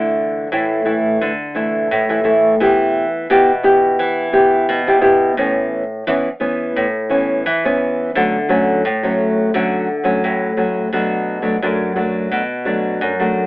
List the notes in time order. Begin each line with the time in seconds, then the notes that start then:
Already playing: D3 E3 A3 E4
0.52 A2 E3 A3 E4
0.85 E3 A3 E4
1.21 D3
1.55 E3 A3 E4
1.91 A2
2.09 E3 A3 E4
2.24 E3 A3 E4
2.60 E3 B3 E4 G4
3.30 B2 B3 E4 G4
3.63 B3 E4 G4
3.99 E3
4.33 B3 E4 G4
4.69 B2
4.87 B3 E4 G4
5.01 B3 E4 G4
5.37 A2 E3 B3 C#4
6.07 E3 B3 C#4
6.40 E3 B3 C#4
6.76 A2
7.10 E3 B3 C#4
7.46 E3
7.65 E3 B3 C#4
8.15 D3 F#3 A3 C#4
8.49 F#3 A3 C#4
8.85 A2
9.03 F#3 A3 C#4
9.54 D3 F#3 A3 C#4
10.04 F#3 A3 C#4
10.24 A2
10.57 F#3 A3 C#4
10.93 B2 F#3 A3 D4
11.42 F#3 A3 D4
11.62 F#2 F#3 A3 D4
11.96 F#3 A3 D4
12.32 B2
12.65 F#3 A3 D4
13.01 F#2
13.20 F#3 A3 D4